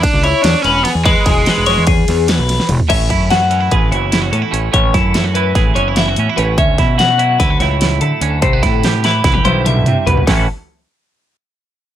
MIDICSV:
0, 0, Header, 1, 6, 480
1, 0, Start_track
1, 0, Key_signature, 3, "major"
1, 0, Tempo, 409556
1, 1235, Time_signature, 9, 3, 24, 8
1, 14012, End_track
2, 0, Start_track
2, 0, Title_t, "Clean electric guitar"
2, 0, Program_c, 0, 27
2, 0, Note_on_c, 0, 74, 83
2, 278, Note_off_c, 0, 74, 0
2, 283, Note_on_c, 0, 73, 86
2, 759, Note_off_c, 0, 73, 0
2, 765, Note_on_c, 0, 71, 85
2, 1005, Note_off_c, 0, 71, 0
2, 1005, Note_on_c, 0, 68, 76
2, 1236, Note_off_c, 0, 68, 0
2, 1241, Note_on_c, 0, 71, 87
2, 1477, Note_off_c, 0, 71, 0
2, 1487, Note_on_c, 0, 68, 76
2, 1726, Note_off_c, 0, 68, 0
2, 1726, Note_on_c, 0, 71, 95
2, 1948, Note_off_c, 0, 71, 0
2, 1953, Note_on_c, 0, 73, 77
2, 2192, Note_on_c, 0, 68, 98
2, 2193, Note_off_c, 0, 73, 0
2, 2672, Note_off_c, 0, 68, 0
2, 2675, Note_on_c, 0, 71, 92
2, 3153, Note_off_c, 0, 71, 0
2, 3391, Note_on_c, 0, 76, 82
2, 3869, Note_off_c, 0, 76, 0
2, 3873, Note_on_c, 0, 78, 82
2, 4352, Note_off_c, 0, 78, 0
2, 4357, Note_on_c, 0, 71, 88
2, 4587, Note_off_c, 0, 71, 0
2, 4591, Note_on_c, 0, 73, 69
2, 5066, Note_off_c, 0, 73, 0
2, 5071, Note_on_c, 0, 69, 79
2, 5548, Note_on_c, 0, 73, 84
2, 5552, Note_off_c, 0, 69, 0
2, 5790, Note_on_c, 0, 69, 70
2, 5791, Note_off_c, 0, 73, 0
2, 6260, Note_off_c, 0, 69, 0
2, 6265, Note_on_c, 0, 71, 75
2, 6743, Note_on_c, 0, 73, 79
2, 6749, Note_off_c, 0, 71, 0
2, 6987, Note_off_c, 0, 73, 0
2, 6987, Note_on_c, 0, 76, 88
2, 7469, Note_on_c, 0, 71, 70
2, 7471, Note_off_c, 0, 76, 0
2, 7709, Note_on_c, 0, 76, 81
2, 7711, Note_off_c, 0, 71, 0
2, 8181, Note_off_c, 0, 76, 0
2, 8186, Note_on_c, 0, 78, 89
2, 8670, Note_off_c, 0, 78, 0
2, 8670, Note_on_c, 0, 71, 91
2, 8904, Note_off_c, 0, 71, 0
2, 8909, Note_on_c, 0, 73, 82
2, 9388, Note_off_c, 0, 73, 0
2, 9392, Note_on_c, 0, 69, 87
2, 9866, Note_off_c, 0, 69, 0
2, 9870, Note_on_c, 0, 72, 92
2, 10115, Note_off_c, 0, 72, 0
2, 10115, Note_on_c, 0, 69, 73
2, 10595, Note_off_c, 0, 69, 0
2, 10598, Note_on_c, 0, 71, 74
2, 11069, Note_off_c, 0, 71, 0
2, 11074, Note_on_c, 0, 72, 81
2, 11314, Note_off_c, 0, 72, 0
2, 11314, Note_on_c, 0, 76, 82
2, 11795, Note_off_c, 0, 76, 0
2, 11797, Note_on_c, 0, 71, 78
2, 12031, Note_off_c, 0, 71, 0
2, 12035, Note_on_c, 0, 69, 82
2, 12259, Note_off_c, 0, 69, 0
2, 14012, End_track
3, 0, Start_track
3, 0, Title_t, "Clean electric guitar"
3, 0, Program_c, 1, 27
3, 3383, Note_on_c, 1, 45, 70
3, 3392, Note_on_c, 1, 61, 60
3, 3630, Note_on_c, 1, 64, 62
3, 3877, Note_on_c, 1, 66, 55
3, 4106, Note_on_c, 1, 52, 62
3, 4107, Note_off_c, 1, 64, 0
3, 4112, Note_off_c, 1, 61, 0
3, 4112, Note_on_c, 1, 61, 55
3, 4224, Note_off_c, 1, 61, 0
3, 4224, Note_on_c, 1, 64, 57
3, 4362, Note_off_c, 1, 66, 0
3, 4366, Note_on_c, 1, 68, 62
3, 4574, Note_off_c, 1, 64, 0
3, 4584, Note_on_c, 1, 40, 62
3, 4587, Note_off_c, 1, 45, 0
3, 4593, Note_on_c, 1, 64, 53
3, 4820, Note_off_c, 1, 68, 0
3, 4825, Note_off_c, 1, 64, 0
3, 4825, Note_on_c, 1, 64, 57
3, 4942, Note_off_c, 1, 64, 0
3, 4942, Note_on_c, 1, 66, 56
3, 5055, Note_on_c, 1, 61, 50
3, 5179, Note_off_c, 1, 61, 0
3, 5179, Note_on_c, 1, 64, 47
3, 5290, Note_on_c, 1, 45, 69
3, 5299, Note_on_c, 1, 61, 59
3, 5309, Note_off_c, 1, 40, 0
3, 5516, Note_off_c, 1, 45, 0
3, 5529, Note_on_c, 1, 45, 68
3, 5534, Note_off_c, 1, 61, 0
3, 5539, Note_on_c, 1, 61, 53
3, 5546, Note_off_c, 1, 64, 0
3, 5547, Note_off_c, 1, 66, 0
3, 5792, Note_on_c, 1, 64, 61
3, 6033, Note_off_c, 1, 64, 0
3, 6033, Note_on_c, 1, 64, 59
3, 6149, Note_off_c, 1, 64, 0
3, 6149, Note_on_c, 1, 66, 49
3, 6271, Note_off_c, 1, 52, 0
3, 6276, Note_on_c, 1, 52, 69
3, 6288, Note_on_c, 1, 64, 60
3, 6511, Note_off_c, 1, 66, 0
3, 6516, Note_on_c, 1, 68, 63
3, 6735, Note_off_c, 1, 61, 0
3, 6742, Note_off_c, 1, 45, 0
3, 6744, Note_off_c, 1, 64, 0
3, 6749, Note_on_c, 1, 61, 66
3, 6756, Note_on_c, 1, 40, 69
3, 6892, Note_off_c, 1, 61, 0
3, 6892, Note_on_c, 1, 64, 47
3, 6988, Note_off_c, 1, 64, 0
3, 6995, Note_off_c, 1, 68, 0
3, 7002, Note_on_c, 1, 64, 55
3, 7128, Note_off_c, 1, 64, 0
3, 7128, Note_on_c, 1, 66, 57
3, 7260, Note_on_c, 1, 61, 51
3, 7377, Note_off_c, 1, 61, 0
3, 7377, Note_on_c, 1, 64, 51
3, 7473, Note_on_c, 1, 45, 64
3, 7475, Note_off_c, 1, 40, 0
3, 7487, Note_on_c, 1, 61, 62
3, 7692, Note_off_c, 1, 61, 0
3, 7714, Note_off_c, 1, 45, 0
3, 7715, Note_on_c, 1, 61, 64
3, 7721, Note_off_c, 1, 66, 0
3, 7726, Note_off_c, 1, 64, 0
3, 7962, Note_on_c, 1, 64, 64
3, 8179, Note_on_c, 1, 66, 60
3, 8415, Note_off_c, 1, 52, 0
3, 8419, Note_on_c, 1, 54, 73
3, 8424, Note_off_c, 1, 64, 0
3, 8428, Note_on_c, 1, 64, 68
3, 8663, Note_off_c, 1, 66, 0
3, 8668, Note_off_c, 1, 64, 0
3, 8668, Note_on_c, 1, 64, 70
3, 8792, Note_off_c, 1, 64, 0
3, 8792, Note_on_c, 1, 66, 57
3, 8917, Note_on_c, 1, 45, 70
3, 8931, Note_on_c, 1, 64, 66
3, 9153, Note_off_c, 1, 66, 0
3, 9166, Note_off_c, 1, 64, 0
3, 9166, Note_on_c, 1, 64, 56
3, 9389, Note_off_c, 1, 64, 0
3, 9403, Note_on_c, 1, 64, 50
3, 9624, Note_off_c, 1, 61, 0
3, 9628, Note_on_c, 1, 50, 65
3, 9636, Note_off_c, 1, 45, 0
3, 9638, Note_on_c, 1, 61, 62
3, 9839, Note_off_c, 1, 54, 0
3, 9843, Note_off_c, 1, 50, 0
3, 9848, Note_off_c, 1, 61, 0
3, 9866, Note_on_c, 1, 48, 76
3, 9872, Note_on_c, 1, 57, 56
3, 9999, Note_off_c, 1, 57, 0
3, 9999, Note_on_c, 1, 59, 51
3, 10104, Note_off_c, 1, 64, 0
3, 10108, Note_on_c, 1, 64, 68
3, 10367, Note_on_c, 1, 67, 63
3, 10592, Note_off_c, 1, 48, 0
3, 10592, Note_off_c, 1, 64, 0
3, 10600, Note_on_c, 1, 52, 68
3, 10611, Note_on_c, 1, 64, 64
3, 10826, Note_off_c, 1, 64, 0
3, 10835, Note_off_c, 1, 67, 0
3, 10840, Note_on_c, 1, 64, 70
3, 10942, Note_off_c, 1, 64, 0
3, 10942, Note_on_c, 1, 67, 51
3, 11066, Note_on_c, 1, 43, 71
3, 11074, Note_on_c, 1, 64, 62
3, 11322, Note_on_c, 1, 50, 58
3, 11559, Note_off_c, 1, 50, 0
3, 11578, Note_on_c, 1, 48, 59
3, 11803, Note_off_c, 1, 48, 0
3, 11808, Note_on_c, 1, 47, 59
3, 12003, Note_off_c, 1, 43, 0
3, 12007, Note_off_c, 1, 64, 0
3, 12030, Note_off_c, 1, 67, 0
3, 12039, Note_off_c, 1, 59, 0
3, 12042, Note_off_c, 1, 47, 0
3, 12044, Note_off_c, 1, 52, 0
3, 12049, Note_on_c, 1, 45, 62
3, 12058, Note_on_c, 1, 52, 62
3, 12062, Note_on_c, 1, 61, 59
3, 12080, Note_on_c, 1, 64, 59
3, 12086, Note_on_c, 1, 66, 53
3, 12259, Note_off_c, 1, 45, 0
3, 12263, Note_off_c, 1, 52, 0
3, 12266, Note_off_c, 1, 61, 0
3, 12275, Note_off_c, 1, 64, 0
3, 12278, Note_off_c, 1, 66, 0
3, 14012, End_track
4, 0, Start_track
4, 0, Title_t, "Overdriven electric guitar"
4, 0, Program_c, 2, 29
4, 27, Note_on_c, 2, 62, 106
4, 267, Note_on_c, 2, 64, 93
4, 279, Note_off_c, 2, 62, 0
4, 492, Note_on_c, 2, 62, 101
4, 494, Note_off_c, 2, 64, 0
4, 732, Note_off_c, 2, 62, 0
4, 737, Note_on_c, 2, 61, 97
4, 969, Note_off_c, 2, 61, 0
4, 987, Note_on_c, 2, 59, 93
4, 1053, Note_off_c, 2, 59, 0
4, 1228, Note_on_c, 2, 56, 89
4, 2143, Note_off_c, 2, 56, 0
4, 14012, End_track
5, 0, Start_track
5, 0, Title_t, "Fingered electric bass"
5, 0, Program_c, 3, 33
5, 156, Note_on_c, 3, 37, 93
5, 382, Note_off_c, 3, 37, 0
5, 518, Note_on_c, 3, 40, 97
5, 630, Note_off_c, 3, 40, 0
5, 752, Note_on_c, 3, 28, 95
5, 980, Note_off_c, 3, 28, 0
5, 1114, Note_on_c, 3, 40, 88
5, 1340, Note_off_c, 3, 40, 0
5, 1480, Note_on_c, 3, 28, 90
5, 1703, Note_off_c, 3, 28, 0
5, 1848, Note_on_c, 3, 28, 91
5, 2067, Note_off_c, 3, 28, 0
5, 2083, Note_on_c, 3, 40, 84
5, 2417, Note_off_c, 3, 40, 0
5, 2442, Note_on_c, 3, 40, 87
5, 2776, Note_off_c, 3, 40, 0
5, 2801, Note_on_c, 3, 35, 95
5, 3022, Note_off_c, 3, 35, 0
5, 3151, Note_on_c, 3, 28, 99
5, 3264, Note_off_c, 3, 28, 0
5, 3395, Note_on_c, 3, 33, 90
5, 3619, Note_off_c, 3, 33, 0
5, 3634, Note_on_c, 3, 42, 75
5, 4311, Note_off_c, 3, 42, 0
5, 4355, Note_on_c, 3, 33, 88
5, 4579, Note_off_c, 3, 33, 0
5, 4589, Note_on_c, 3, 30, 97
5, 5042, Note_off_c, 3, 30, 0
5, 5068, Note_on_c, 3, 45, 79
5, 5183, Note_off_c, 3, 45, 0
5, 5305, Note_on_c, 3, 33, 93
5, 5535, Note_off_c, 3, 33, 0
5, 5552, Note_on_c, 3, 33, 90
5, 5778, Note_off_c, 3, 33, 0
5, 5793, Note_on_c, 3, 42, 86
5, 6471, Note_off_c, 3, 42, 0
5, 6507, Note_on_c, 3, 33, 90
5, 6736, Note_off_c, 3, 33, 0
5, 6748, Note_on_c, 3, 30, 87
5, 7203, Note_off_c, 3, 30, 0
5, 7242, Note_on_c, 3, 45, 81
5, 7351, Note_off_c, 3, 45, 0
5, 7475, Note_on_c, 3, 33, 95
5, 7701, Note_off_c, 3, 33, 0
5, 7711, Note_on_c, 3, 38, 92
5, 7939, Note_off_c, 3, 38, 0
5, 7955, Note_on_c, 3, 47, 81
5, 8633, Note_off_c, 3, 47, 0
5, 8668, Note_on_c, 3, 38, 93
5, 8897, Note_off_c, 3, 38, 0
5, 8911, Note_on_c, 3, 37, 96
5, 9365, Note_off_c, 3, 37, 0
5, 9393, Note_on_c, 3, 50, 87
5, 9507, Note_off_c, 3, 50, 0
5, 9625, Note_on_c, 3, 38, 99
5, 9856, Note_off_c, 3, 38, 0
5, 9875, Note_on_c, 3, 36, 95
5, 10101, Note_off_c, 3, 36, 0
5, 10113, Note_on_c, 3, 45, 94
5, 10792, Note_off_c, 3, 45, 0
5, 10830, Note_on_c, 3, 36, 87
5, 11059, Note_off_c, 3, 36, 0
5, 11078, Note_on_c, 3, 35, 104
5, 11529, Note_off_c, 3, 35, 0
5, 11553, Note_on_c, 3, 48, 88
5, 11668, Note_off_c, 3, 48, 0
5, 11797, Note_on_c, 3, 36, 92
5, 12023, Note_off_c, 3, 36, 0
5, 12041, Note_on_c, 3, 33, 99
5, 12263, Note_off_c, 3, 33, 0
5, 14012, End_track
6, 0, Start_track
6, 0, Title_t, "Drums"
6, 40, Note_on_c, 9, 36, 107
6, 42, Note_on_c, 9, 51, 93
6, 157, Note_off_c, 9, 36, 0
6, 160, Note_off_c, 9, 51, 0
6, 277, Note_on_c, 9, 51, 75
6, 394, Note_off_c, 9, 51, 0
6, 514, Note_on_c, 9, 51, 105
6, 526, Note_on_c, 9, 38, 114
6, 631, Note_off_c, 9, 51, 0
6, 643, Note_off_c, 9, 38, 0
6, 753, Note_on_c, 9, 51, 72
6, 871, Note_off_c, 9, 51, 0
6, 995, Note_on_c, 9, 51, 84
6, 1007, Note_on_c, 9, 38, 41
6, 1112, Note_off_c, 9, 51, 0
6, 1124, Note_off_c, 9, 38, 0
6, 1237, Note_on_c, 9, 36, 111
6, 1237, Note_on_c, 9, 51, 100
6, 1354, Note_off_c, 9, 36, 0
6, 1354, Note_off_c, 9, 51, 0
6, 1474, Note_on_c, 9, 51, 88
6, 1476, Note_on_c, 9, 36, 90
6, 1486, Note_on_c, 9, 38, 41
6, 1591, Note_off_c, 9, 51, 0
6, 1593, Note_off_c, 9, 36, 0
6, 1603, Note_off_c, 9, 38, 0
6, 1715, Note_on_c, 9, 51, 108
6, 1726, Note_on_c, 9, 38, 100
6, 1832, Note_off_c, 9, 51, 0
6, 1844, Note_off_c, 9, 38, 0
6, 1950, Note_on_c, 9, 51, 84
6, 1961, Note_on_c, 9, 38, 35
6, 2067, Note_off_c, 9, 51, 0
6, 2078, Note_off_c, 9, 38, 0
6, 2187, Note_on_c, 9, 51, 105
6, 2194, Note_on_c, 9, 36, 104
6, 2305, Note_off_c, 9, 51, 0
6, 2311, Note_off_c, 9, 36, 0
6, 2437, Note_on_c, 9, 51, 83
6, 2449, Note_on_c, 9, 38, 36
6, 2554, Note_off_c, 9, 51, 0
6, 2566, Note_off_c, 9, 38, 0
6, 2674, Note_on_c, 9, 51, 109
6, 2686, Note_on_c, 9, 38, 107
6, 2791, Note_off_c, 9, 51, 0
6, 2803, Note_off_c, 9, 38, 0
6, 2919, Note_on_c, 9, 51, 75
6, 2931, Note_on_c, 9, 38, 32
6, 3036, Note_off_c, 9, 51, 0
6, 3046, Note_off_c, 9, 38, 0
6, 3046, Note_on_c, 9, 38, 63
6, 3150, Note_on_c, 9, 47, 83
6, 3150, Note_on_c, 9, 51, 91
6, 3163, Note_off_c, 9, 38, 0
6, 3268, Note_off_c, 9, 47, 0
6, 3268, Note_off_c, 9, 51, 0
6, 3279, Note_on_c, 9, 43, 100
6, 3395, Note_on_c, 9, 36, 95
6, 3396, Note_off_c, 9, 43, 0
6, 3396, Note_on_c, 9, 42, 84
6, 3396, Note_on_c, 9, 49, 105
6, 3513, Note_off_c, 9, 36, 0
6, 3513, Note_off_c, 9, 42, 0
6, 3513, Note_off_c, 9, 49, 0
6, 3634, Note_on_c, 9, 42, 69
6, 3635, Note_on_c, 9, 36, 78
6, 3751, Note_off_c, 9, 42, 0
6, 3752, Note_off_c, 9, 36, 0
6, 3873, Note_on_c, 9, 42, 85
6, 3885, Note_on_c, 9, 38, 100
6, 3990, Note_off_c, 9, 42, 0
6, 4002, Note_off_c, 9, 38, 0
6, 4112, Note_on_c, 9, 42, 62
6, 4229, Note_off_c, 9, 42, 0
6, 4353, Note_on_c, 9, 42, 83
6, 4356, Note_on_c, 9, 36, 100
6, 4470, Note_off_c, 9, 42, 0
6, 4474, Note_off_c, 9, 36, 0
6, 4597, Note_on_c, 9, 42, 66
6, 4714, Note_off_c, 9, 42, 0
6, 4832, Note_on_c, 9, 42, 95
6, 4844, Note_on_c, 9, 38, 112
6, 4949, Note_off_c, 9, 42, 0
6, 4961, Note_off_c, 9, 38, 0
6, 5073, Note_on_c, 9, 42, 60
6, 5190, Note_off_c, 9, 42, 0
6, 5317, Note_on_c, 9, 42, 81
6, 5435, Note_off_c, 9, 42, 0
6, 5552, Note_on_c, 9, 36, 106
6, 5552, Note_on_c, 9, 42, 92
6, 5669, Note_off_c, 9, 36, 0
6, 5669, Note_off_c, 9, 42, 0
6, 5792, Note_on_c, 9, 36, 86
6, 5792, Note_on_c, 9, 42, 75
6, 5804, Note_on_c, 9, 38, 38
6, 5909, Note_off_c, 9, 36, 0
6, 5910, Note_off_c, 9, 42, 0
6, 5921, Note_off_c, 9, 38, 0
6, 6027, Note_on_c, 9, 42, 87
6, 6039, Note_on_c, 9, 38, 108
6, 6144, Note_off_c, 9, 42, 0
6, 6156, Note_off_c, 9, 38, 0
6, 6271, Note_on_c, 9, 42, 75
6, 6389, Note_off_c, 9, 42, 0
6, 6508, Note_on_c, 9, 36, 104
6, 6508, Note_on_c, 9, 42, 92
6, 6520, Note_on_c, 9, 38, 32
6, 6625, Note_off_c, 9, 36, 0
6, 6625, Note_off_c, 9, 42, 0
6, 6637, Note_off_c, 9, 38, 0
6, 6751, Note_on_c, 9, 42, 69
6, 6868, Note_off_c, 9, 42, 0
6, 6985, Note_on_c, 9, 42, 91
6, 6997, Note_on_c, 9, 38, 106
6, 7102, Note_off_c, 9, 42, 0
6, 7114, Note_off_c, 9, 38, 0
6, 7224, Note_on_c, 9, 42, 66
6, 7341, Note_off_c, 9, 42, 0
6, 7475, Note_on_c, 9, 42, 75
6, 7592, Note_off_c, 9, 42, 0
6, 7710, Note_on_c, 9, 36, 104
6, 7713, Note_on_c, 9, 42, 85
6, 7827, Note_off_c, 9, 36, 0
6, 7830, Note_off_c, 9, 42, 0
6, 7950, Note_on_c, 9, 36, 86
6, 7950, Note_on_c, 9, 42, 69
6, 7962, Note_on_c, 9, 38, 36
6, 8067, Note_off_c, 9, 36, 0
6, 8067, Note_off_c, 9, 42, 0
6, 8079, Note_off_c, 9, 38, 0
6, 8192, Note_on_c, 9, 42, 89
6, 8203, Note_on_c, 9, 38, 107
6, 8309, Note_off_c, 9, 42, 0
6, 8321, Note_off_c, 9, 38, 0
6, 8431, Note_on_c, 9, 42, 68
6, 8548, Note_off_c, 9, 42, 0
6, 8670, Note_on_c, 9, 36, 107
6, 8673, Note_on_c, 9, 42, 97
6, 8685, Note_on_c, 9, 38, 35
6, 8787, Note_off_c, 9, 36, 0
6, 8790, Note_off_c, 9, 42, 0
6, 8802, Note_off_c, 9, 38, 0
6, 8909, Note_on_c, 9, 42, 72
6, 8921, Note_on_c, 9, 38, 34
6, 9027, Note_off_c, 9, 42, 0
6, 9038, Note_off_c, 9, 38, 0
6, 9151, Note_on_c, 9, 42, 104
6, 9163, Note_on_c, 9, 38, 104
6, 9269, Note_off_c, 9, 42, 0
6, 9280, Note_off_c, 9, 38, 0
6, 9387, Note_on_c, 9, 42, 73
6, 9504, Note_off_c, 9, 42, 0
6, 9628, Note_on_c, 9, 42, 87
6, 9745, Note_off_c, 9, 42, 0
6, 9869, Note_on_c, 9, 42, 90
6, 9872, Note_on_c, 9, 36, 107
6, 9987, Note_off_c, 9, 42, 0
6, 9989, Note_off_c, 9, 36, 0
6, 10113, Note_on_c, 9, 36, 81
6, 10115, Note_on_c, 9, 42, 81
6, 10127, Note_on_c, 9, 38, 36
6, 10230, Note_off_c, 9, 36, 0
6, 10232, Note_off_c, 9, 42, 0
6, 10244, Note_off_c, 9, 38, 0
6, 10354, Note_on_c, 9, 42, 89
6, 10366, Note_on_c, 9, 38, 110
6, 10472, Note_off_c, 9, 42, 0
6, 10483, Note_off_c, 9, 38, 0
6, 10593, Note_on_c, 9, 42, 73
6, 10604, Note_on_c, 9, 38, 60
6, 10710, Note_off_c, 9, 42, 0
6, 10722, Note_off_c, 9, 38, 0
6, 10831, Note_on_c, 9, 42, 91
6, 10832, Note_on_c, 9, 36, 105
6, 10843, Note_on_c, 9, 38, 68
6, 10948, Note_off_c, 9, 42, 0
6, 10949, Note_off_c, 9, 36, 0
6, 10958, Note_on_c, 9, 48, 73
6, 10960, Note_off_c, 9, 38, 0
6, 11075, Note_off_c, 9, 48, 0
6, 11075, Note_on_c, 9, 42, 77
6, 11075, Note_on_c, 9, 48, 75
6, 11192, Note_off_c, 9, 42, 0
6, 11192, Note_off_c, 9, 48, 0
6, 11321, Note_on_c, 9, 42, 103
6, 11321, Note_on_c, 9, 47, 80
6, 11438, Note_off_c, 9, 42, 0
6, 11438, Note_off_c, 9, 47, 0
6, 11443, Note_on_c, 9, 45, 73
6, 11558, Note_off_c, 9, 45, 0
6, 11558, Note_on_c, 9, 42, 60
6, 11558, Note_on_c, 9, 45, 89
6, 11675, Note_off_c, 9, 42, 0
6, 11675, Note_off_c, 9, 45, 0
6, 11804, Note_on_c, 9, 42, 75
6, 11804, Note_on_c, 9, 43, 103
6, 11922, Note_off_c, 9, 42, 0
6, 11922, Note_off_c, 9, 43, 0
6, 11922, Note_on_c, 9, 43, 84
6, 12039, Note_off_c, 9, 43, 0
6, 12041, Note_on_c, 9, 36, 91
6, 12044, Note_on_c, 9, 46, 85
6, 12056, Note_on_c, 9, 38, 99
6, 12158, Note_off_c, 9, 36, 0
6, 12161, Note_off_c, 9, 46, 0
6, 12173, Note_off_c, 9, 38, 0
6, 14012, End_track
0, 0, End_of_file